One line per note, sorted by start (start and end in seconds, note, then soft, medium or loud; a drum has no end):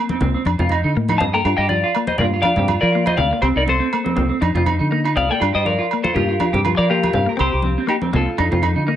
0.00 0.12 A#3 medium
0.09 0.17 C4 medium
0.09 high conga medium
0.21 0.34 C2 medium
0.21 0.37 A#3 medium
0.21 0.30 C4 medium
0.21 low conga medium
0.34 0.42 C4 medium
0.45 0.58 F2 medium
0.45 0.55 D4 medium
0.45 muted clean electric guitar stroke medium
0.45 high conga medium
0.45 low agogo medium
0.59 0.83 F2 medium
0.59 0.75 C4 medium
0.59 0.67 F4 medium
0.59 low conga medium
0.69 0.79 D#4 medium
0.69 high conga medium
0.69 low agogo medium
0.84 0.95 D3 medium
0.84 0.91 D#4 medium
0.96 1.18 A2 medium
0.96 1.11 A#3 medium
1.09 1.17 D#4 medium
1.09 high conga medium
1.09 low agogo medium
1.18 1.43 G2 medium
1.18 1.29 C4 medium
1.18 1.29 D#5 medium
1.18 1.24 F5 medium
1.18 1.23 A5 medium
1.18 low conga medium
1.33 1.41 A#3 medium
1.33 1.41 A4 medium
1.33 1.55 G5 medium
1.33 1.59 A#5 medium
1.45 1.57 G2 loud
1.45 1.61 D4 medium
1.45 1.54 F4 medium
1.45 low agogo medium
1.57 1.82 G2 medium
1.57 1.67 G4 medium
1.57 1.69 D#5 medium
1.57 1.68 G5 medium
1.68 1.79 F4 medium
1.68 2.05 D5 medium
1.68 2.08 F5 medium
1.68 high conga medium
1.84 1.91 F4 medium
1.95 2.10 A#3 medium
1.95 low agogo medium
2.07 2.18 C5 medium
2.07 2.18 D#5 medium
2.07 high conga medium
2.18 2.42 G2 medium
2.18 2.36 A#3 medium
2.18 2.29 F4 medium
2.18 2.26 A#4 medium
2.18 2.25 D5 medium
2.18 low conga medium
2.34 2.41 F4 medium
2.42 2.53 D4 medium
2.42 2.53 F4 medium
2.42 2.78 D5 medium
2.42 2.83 F5 medium
2.42 high conga medium
2.42 low agogo medium
2.56 2.81 G2 medium
2.56 2.73 C4 medium
2.56 2.65 G4 medium
2.56 low conga medium
2.68 2.78 F4 medium
2.68 high conga medium
2.68 low agogo medium
2.81 3.16 F3 medium
2.81 2.89 F4 medium
2.81 3.05 A#4 medium
2.81 3.07 D5 medium
2.93 3.10 A#3 medium
2.93 3.02 F4 medium
3.06 3.14 F4 medium
3.06 3.17 C5 medium
3.06 3.17 D#5 medium
3.06 high conga medium
3.06 low agogo medium
3.17 3.31 D2 medium
3.17 3.27 C4 medium
3.17 3.41 D5 medium
3.17 3.26 F5 medium
3.17 3.41 F5 medium
3.17 low conga medium
3.31 3.39 A#3 medium
3.31 muted clean electric guitar stroke medium
3.42 3.55 C2 loud
3.42 3.52 C4 medium
3.42 3.59 C4 medium
3.42 3.47 G4 medium
3.42 3.47 C5 medium
3.42 low agogo medium
3.55 3.79 C2 medium
3.55 3.63 D#4 medium
3.55 3.62 A#4 medium
3.55 3.62 D5 medium
3.66 3.75 C4 medium
3.66 4.39 A4 medium
3.66 4.39 C5 medium
3.66 high conga medium
3.80 3.87 C4 medium
3.93 4.08 A#3 medium
3.93 low agogo medium
4.04 4.12 C4 medium
4.04 high conga medium
4.16 4.30 C2 medium
4.16 4.32 A#3 medium
4.16 4.25 C4 medium
4.16 low conga medium
4.29 4.37 C4 medium
4.41 4.54 F2 medium
4.41 4.50 D4 medium
4.41 4.50 D#4 medium
4.41 high conga medium
4.41 low agogo medium
4.54 4.78 F2 medium
4.54 4.72 C4 medium
4.54 4.62 F4 medium
4.54 low conga medium
4.66 4.75 D#4 medium
4.66 high conga medium
4.66 low agogo medium
4.79 5.14 D3 medium
4.79 4.87 D#4 medium
4.91 5.07 A#3 medium
4.91 5.00 D#4 medium
5.04 5.12 D#4 medium
5.04 low agogo medium
5.16 5.29 C2 medium
5.16 5.24 C4 medium
5.16 5.29 D5 medium
5.16 5.24 D#5 medium
5.16 5.31 F5 medium
5.16 low conga medium
5.29 5.38 A#3 medium
5.29 5.36 A4 medium
5.29 5.53 D5 medium
5.29 5.54 G5 medium
5.40 5.54 G2 loud
5.40 5.57 D4 medium
5.40 5.49 F4 medium
5.40 low agogo medium
5.53 5.78 G2 medium
5.53 5.61 G4 medium
5.53 5.66 C5 medium
5.53 5.66 D#5 medium
5.65 5.74 F4 medium
5.65 6.01 A#4 medium
5.65 6.04 D5 loud
5.65 high conga medium
5.79 5.86 F4 medium
5.91 6.07 A#3 medium
5.91 low agogo medium
6.03 6.11 F4 medium
6.03 6.14 A4 medium
6.03 6.14 C5 medium
6.03 high conga medium
6.14 6.38 G2 medium
6.14 6.31 A#3 medium
6.14 6.23 F4 medium
6.14 6.74 G4 medium
6.14 6.77 A#4 medium
6.14 low conga medium
6.29 6.36 F4 medium
6.40 6.48 D4 medium
6.40 6.49 F4 medium
6.40 high conga medium
6.40 low agogo medium
6.53 6.76 G2 medium
6.53 6.68 C4 medium
6.53 6.60 G4 medium
6.53 low conga medium
6.65 6.74 F4 medium
6.65 high conga medium
6.65 low agogo medium
6.77 7.12 F3 medium
6.77 6.86 F4 medium
6.77 6.88 A#4 medium
6.77 6.88 D5 medium
6.90 7.05 A#3 medium
6.90 6.98 F4 medium
6.90 7.35 G4 medium
6.90 7.40 A#4 medium
7.03 7.11 F4 medium
7.03 high conga medium
7.03 low agogo medium
7.13 7.26 G2 medium
7.13 7.22 C4 medium
7.13 7.23 F5 medium
7.13 low conga medium
7.26 7.33 A#3 medium
7.26 7.36 A#4 medium
7.37 7.52 C2 loud
7.37 7.52 C4 medium
7.37 7.48 C4 medium
7.37 7.85 G4 medium
7.37 7.85 C5 medium
7.37 low agogo medium
7.53 7.76 C2 medium
7.53 7.60 G4 medium
7.62 7.72 C4 medium
7.62 high conga medium
7.78 7.85 C4 medium
7.87 8.02 A#3 medium
7.87 7.95 D#4 medium
7.87 7.96 G4 medium
7.87 low agogo medium
8.02 8.09 C4 medium
8.02 high conga medium
8.13 8.26 C2 medium
8.13 8.28 A#3 medium
8.13 8.21 C4 medium
8.13 8.84 F4 medium
8.13 8.84 A4 medium
8.13 low conga medium
8.26 muted clean electric guitar stroke medium
8.38 8.51 F2 medium
8.38 8.46 D4 medium
8.38 8.47 D#4 medium
8.38 high conga medium
8.38 low agogo medium
8.51 8.75 F2 medium
8.51 8.67 C4 medium
8.51 8.58 F4 medium
8.51 low conga medium
8.62 8.71 D#4 medium
8.62 high conga medium
8.62 low agogo medium
8.76 8.96 D3 medium
8.76 8.83 D#4 medium
8.87 8.96 A#3 medium
8.87 8.95 D#4 medium